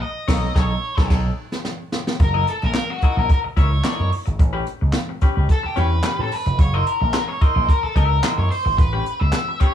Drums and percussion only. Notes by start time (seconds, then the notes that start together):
0.28 kick, snare, crash
0.56 kick, snare
0.98 kick, snare
1.10 kick, snare, crash
1.52 snare
1.65 snare
1.92 snare
2.07 snare
2.19 kick, closed hi-hat
2.47 closed hi-hat
2.62 closed hi-hat
2.74 snare, clap, closed hi-hat
3.01 kick, closed hi-hat
3.29 kick, closed hi-hat
3.57 kick, closed hi-hat
3.84 snare, clap, closed hi-hat
4.12 open hi-hat
4.26 closed hi-hat
4.39 kick, closed hi-hat
4.67 closed hi-hat
4.93 snare, clap, closed hi-hat
5.21 kick, closed hi-hat
5.49 kick, closed hi-hat
5.76 closed hi-hat
6.03 snare, clap, closed hi-hat
6.32 open hi-hat
6.46 closed hi-hat
6.59 kick, closed hi-hat
6.86 closed hi-hat
7.14 snare, clap, closed hi-hat
7.41 kick, closed hi-hat
7.69 kick, closed hi-hat
7.96 kick, closed hi-hat
8.23 snare, clap, closed hi-hat
8.51 open hi-hat
8.78 kick, closed hi-hat
9.06 closed hi-hat
9.33 snare, clap, closed hi-hat
9.60 kick, closed hi-hat